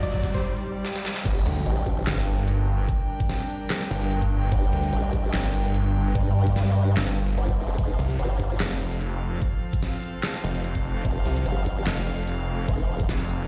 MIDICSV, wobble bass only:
0, 0, Header, 1, 2, 480
1, 0, Start_track
1, 0, Key_signature, -2, "minor"
1, 0, Tempo, 408163
1, 1475, Time_signature, 4, 2, 24, 8
1, 15847, End_track
2, 0, Start_track
2, 0, Title_t, "Wobble bass"
2, 0, Program_c, 0, 39
2, 1474, Note_on_c, 0, 31, 94
2, 1697, Note_off_c, 0, 31, 0
2, 1954, Note_on_c, 0, 33, 99
2, 2417, Note_off_c, 0, 33, 0
2, 5314, Note_on_c, 0, 31, 97
2, 5537, Note_off_c, 0, 31, 0
2, 5793, Note_on_c, 0, 33, 98
2, 6256, Note_off_c, 0, 33, 0
2, 7234, Note_on_c, 0, 43, 100
2, 8177, Note_off_c, 0, 43, 0
2, 8674, Note_on_c, 0, 31, 95
2, 8897, Note_off_c, 0, 31, 0
2, 8915, Note_on_c, 0, 29, 97
2, 9137, Note_off_c, 0, 29, 0
2, 9154, Note_on_c, 0, 29, 98
2, 9377, Note_off_c, 0, 29, 0
2, 9635, Note_on_c, 0, 31, 100
2, 10097, Note_off_c, 0, 31, 0
2, 12994, Note_on_c, 0, 29, 94
2, 13217, Note_off_c, 0, 29, 0
2, 13474, Note_on_c, 0, 31, 97
2, 13937, Note_off_c, 0, 31, 0
2, 14915, Note_on_c, 0, 29, 96
2, 15377, Note_off_c, 0, 29, 0
2, 15847, End_track
0, 0, End_of_file